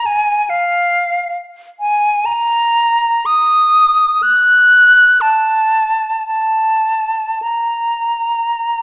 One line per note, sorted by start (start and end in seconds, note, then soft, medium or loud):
0.06 0.51 G#5 medium
0.50 1.37 F5 medium
1.80 2.27 G#5 medium
2.26 3.27 A#5 medium
3.26 4.24 D#6 medium
4.23 5.23 F#6 medium
5.21 6.27 A5 medium
6.28 7.44 A5 medium
7.42 8.82 A#5 soft